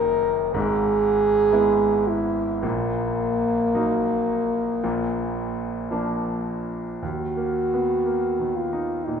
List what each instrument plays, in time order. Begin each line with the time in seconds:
Already playing: grand piano F#1 F#2 D#3 A#3 D#4, french horn A#4
0.54 grand piano G#1 G#2, french horn G#4
1.52 grand piano G#3 B3 E4
2.08 french horn E4
2.62 grand piano A#1 A#2, french horn A#3
3.75 grand piano F#3 A#3 D#4
4.83 grand piano A#1 A#2
5.91 grand piano F3 A#3 D4
7.03 grand piano D#2, french horn F#4
7.37 grand piano A#3
7.74 grand piano B3
8.05 grand piano A#3
8.39 grand piano D#3
8.56 french horn F4
8.73 grand piano D#4
9.05 grand piano A#2, french horn D#4